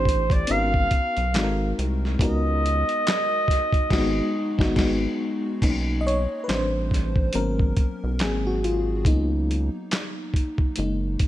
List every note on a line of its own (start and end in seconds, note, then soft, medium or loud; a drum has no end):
0.00 0.45 A1 medium
0.00 0.34 C4 medium
0.00 0.34 D4 medium
0.00 0.35 E4 medium
0.00 0.35 G4 medium
0.00 0.34 C5 medium
0.00 0.36 C5 medium
0.05 kick medium
0.05 closed hi-hat medium
0.30 0.53 D5 medium
0.30 kick medium
0.30 closed hi-hat soft
0.47 0.88 G#1 loud
0.47 1.33 B3 medium
0.47 1.34 C#4 medium
0.47 1.34 D#4 medium
0.47 1.35 F#4 medium
0.47 closed hi-hat medium
0.51 1.35 A#4 medium
0.51 1.78 F5 loud
0.74 kick medium
0.91 1.02 B1 soft
0.91 kick medium
0.91 closed hi-hat medium
1.17 1.36 B1 medium
1.17 closed hi-hat soft
1.34 1.74 G#1 medium
1.34 2.06 G#3 medium
1.34 2.06 C4 medium
1.34 2.06 D#4 medium
1.34 2.07 F#4 medium
1.34 1.43 A4 medium
1.34 snare loud
1.34 clap medium
1.34 closed hi-hat medium
1.43 2.10 A#4 medium
1.79 2.17 C2 medium
1.79 closed hi-hat medium
2.05 snare soft
2.19 2.84 C#2 loud
2.19 3.50 G#3 medium
2.19 3.51 B3 medium
2.19 3.51 D#4 medium
2.19 3.52 F#4 medium
2.19 4.74 D#5 loud
2.19 kick loud
2.19 closed hi-hat medium
2.23 3.52 A#4 medium
2.66 closed hi-hat medium
2.89 closed hi-hat soft
3.07 snare loud
3.07 clap medium
3.07 closed hi-hat medium
3.48 kick medium
3.48 snare soft
3.48 closed hi-hat medium
3.73 kick medium
3.73 closed hi-hat soft
3.90 4.22 G#1 loud
3.90 4.21 G#3 loud
3.90 4.22 D#4 loud
3.90 4.22 F#4 loud
3.90 kick loud
3.90 snare loud
3.90 crash medium
3.97 4.25 B3 medium
4.58 4.74 G#1 loud
4.58 4.73 G#3 medium
4.58 4.74 D#4 medium
4.58 4.75 F#4 medium
4.58 kick loud
4.58 snare loud
4.65 4.78 B3 medium
4.76 5.07 G#1 medium
4.76 5.06 G#3 medium
4.76 5.08 D#4 medium
4.76 5.08 F#4 medium
4.76 kick loud
4.76 snare loud
4.76 crash medium
4.83 5.11 B3 medium
5.62 6.27 B1 loud
5.62 6.22 A#3 soft
5.62 6.23 C#4 soft
5.62 6.23 D#4 medium
5.62 kick loud
5.62 closed hi-hat medium
5.62 crash medium
6.01 6.06 D#5 medium
6.07 6.21 C#5 medium
6.07 closed hi-hat medium
6.44 6.47 B4 medium
6.48 7.31 A1 medium
6.48 7.30 G3 medium
6.48 7.30 C4 soft
6.48 7.30 D4 medium
6.48 7.30 B4 soft
6.48 7.37 C5 medium
6.48 snare loud
6.48 clap medium
6.48 closed hi-hat medium
6.91 kick medium
6.91 snare soft
6.91 closed hi-hat medium
7.16 kick medium
7.33 7.74 G#1 medium
7.33 8.15 F#3 medium
7.33 8.16 A#3 soft
7.33 8.16 B3 soft
7.33 8.16 C#4 medium
7.33 8.23 A#4 medium
7.33 closed hi-hat medium
7.59 kick medium
7.77 7.88 B1 soft
7.77 kick medium
7.77 closed hi-hat medium
8.04 8.23 B1 medium
8.19 9.07 G#1 medium
8.19 9.02 F#3 medium
8.19 9.02 A#3 soft
8.19 9.02 C4 medium
8.19 8.47 G#4 medium
8.19 snare loud
8.19 clap medium
8.19 closed hi-hat medium
8.47 8.64 F#4 medium
8.64 9.08 F4 medium
8.64 closed hi-hat medium
9.05 9.70 C#2 loud
9.05 10.73 F#3 medium
9.05 10.73 A#3 soft
9.05 10.73 B3 soft
9.05 10.31 D#4 medium
9.05 kick loud
9.05 closed hi-hat medium
9.51 closed hi-hat medium
9.91 snare loud
9.91 clap medium
9.91 closed hi-hat medium
10.34 kick medium
10.34 closed hi-hat medium
10.58 kick medium
10.76 11.17 F#1 loud
10.76 11.28 G#3 medium
10.76 11.28 A#3 soft
10.76 11.28 D#4 medium
10.76 closed hi-hat medium
11.19 11.28 G#1 soft
11.19 kick medium
11.19 closed hi-hat medium